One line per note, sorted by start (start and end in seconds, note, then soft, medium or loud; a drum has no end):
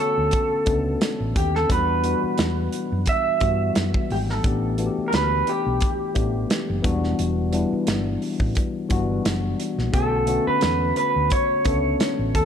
0.00 1.71 D3 medium
0.00 0.66 A3 medium
0.00 0.67 B3 medium
0.00 0.68 C#4 medium
0.00 1.71 F#4 medium
0.00 1.40 A4 medium
0.18 0.30 D2 medium
0.31 kick medium
0.31 closed hi-hat medium
0.66 0.95 C#2 medium
0.66 1.46 A3 medium
0.66 1.46 B3 medium
0.66 1.47 C#4 medium
0.66 1.46 D4 medium
0.66 1.47 A4 medium
0.66 kick medium
0.66 closed hi-hat medium
1.01 snare medium
1.01 closed hi-hat medium
1.20 1.33 A1 medium
1.36 1.64 D#2 medium
1.36 1.55 G4 medium
1.36 kick medium
1.36 closed hi-hat medium
1.55 1.71 A4 medium
1.55 snare soft
1.68 2.13 E2 medium
1.68 1.96 E3 medium
1.68 1.96 G3 medium
1.68 1.96 B3 medium
1.68 1.97 D4 medium
1.68 1.97 F#4 medium
1.68 3.09 B4 medium
1.68 kick medium
1.68 closed hi-hat medium
2.03 3.08 E3 medium
2.03 3.09 G3 medium
2.03 3.09 B3 soft
2.03 3.09 D4 medium
2.03 3.10 F#4 medium
2.03 closed hi-hat medium
2.24 muted fingered electric bass stroke soft
2.38 2.67 E2 medium
2.38 snare loud
2.38 closed hi-hat medium
2.73 closed hi-hat medium
2.92 3.05 F#2 medium
3.06 4.14 E5 loud
3.06 kick medium
3.06 closed hi-hat medium
3.40 3.69 G2 medium
3.40 4.20 E3 medium
3.40 4.20 G3 medium
3.40 4.21 B3 medium
3.40 4.21 D4 medium
3.40 4.21 F#4 medium
3.40 kick medium
3.40 closed hi-hat medium
3.75 3.91 F#2 medium
3.75 snare medium
3.75 closed hi-hat medium
3.94 kick medium
4.10 4.38 G#1 medium
4.10 4.17 G4 medium
4.10 open hi-hat soft
4.29 5.07 A4 medium
4.29 snare soft
4.43 4.88 A1 medium
4.43 4.70 E3 medium
4.43 4.71 A3 medium
4.43 4.71 B3 medium
4.43 4.71 D4 medium
4.43 4.72 G4 medium
4.43 kick medium
4.43 closed hi-hat medium
4.77 5.83 E3 medium
4.77 5.83 A3 medium
4.77 5.84 B3 soft
4.77 5.84 D4 medium
4.77 4.86 F#4 soft
4.77 closed hi-hat medium
4.86 5.87 G4 medium
4.98 muted fingered electric bass stroke soft
5.08 5.14 A#4 medium
5.13 5.41 D2 medium
5.13 5.49 B4 medium
5.13 snare loud
5.13 closed hi-hat medium
5.47 6.82 G4 medium
5.47 closed hi-hat medium
5.66 5.79 B1 medium
5.81 kick medium
5.81 closed hi-hat medium
6.14 6.44 A1 medium
6.14 6.81 E3 medium
6.14 6.84 A3 medium
6.14 6.83 B3 medium
6.14 6.83 D4 medium
6.14 6.85 G4 medium
6.14 kick medium
6.14 closed hi-hat medium
6.50 snare loud
6.50 closed hi-hat medium
6.70 6.82 F#1 medium
6.82 7.13 E1 medium
6.82 7.40 E3 medium
6.82 7.40 G3 medium
6.82 7.40 B3 medium
6.82 7.41 D4 medium
6.82 7.41 F#4 medium
6.82 kick medium
6.82 closed hi-hat medium
7.04 snare soft
7.19 7.62 E1 medium
7.19 closed hi-hat medium
7.52 8.58 E3 medium
7.52 8.58 G3 medium
7.52 8.58 B3 medium
7.52 8.59 D4 medium
7.52 8.59 E4 medium
7.52 closed hi-hat medium
7.73 muted fingered electric bass stroke soft
7.87 8.16 G1 medium
7.87 snare loud
7.87 closed hi-hat medium
8.22 open hi-hat soft
8.40 8.53 A1 medium
8.40 kick medium
8.55 kick medium
8.55 closed hi-hat medium
8.89 9.19 G1 medium
8.89 9.69 E3 medium
8.89 9.70 G3 medium
8.89 9.70 B3 medium
8.89 9.70 D4 medium
8.89 9.71 F#4 medium
8.89 kick medium
8.89 closed hi-hat medium
9.25 9.53 F#1 medium
9.25 snare loud
9.25 closed hi-hat medium
9.60 closed hi-hat medium
9.78 9.91 A#1 medium
9.78 snare soft
9.92 10.37 B1 medium
9.92 10.20 D3 medium
9.92 10.20 A3 medium
9.92 10.20 B3 medium
9.92 10.21 C#4 medium
9.92 10.21 F#4 medium
9.92 10.47 A4 medium
9.92 kick loud
9.92 closed hi-hat medium
10.26 11.32 D3 medium
10.26 11.33 A3 medium
10.26 11.33 B3 medium
10.26 11.33 C#4 medium
10.26 11.34 F#4 medium
10.26 closed hi-hat medium
10.47 10.96 B4 medium
10.47 muted fingered electric bass stroke soft
10.61 10.91 E2 medium
10.61 snare medium
10.61 closed hi-hat medium
10.96 11.32 B4 medium
10.96 closed hi-hat medium
11.16 11.29 D2 medium
11.30 12.35 C#5 medium
11.30 kick medium
11.30 closed hi-hat medium
11.64 11.94 C#2 medium
11.64 12.45 A3 medium
11.64 12.45 B3 medium
11.64 12.45 C#4 medium
11.64 12.45 D4 medium
11.64 12.45 A4 medium
11.64 kick medium
11.64 closed hi-hat medium
12.00 snare loud
12.00 closed hi-hat medium
12.19 12.32 A1 medium
12.35 12.45 D#2 medium
12.35 12.45 A4 medium
12.35 kick medium
12.35 closed hi-hat medium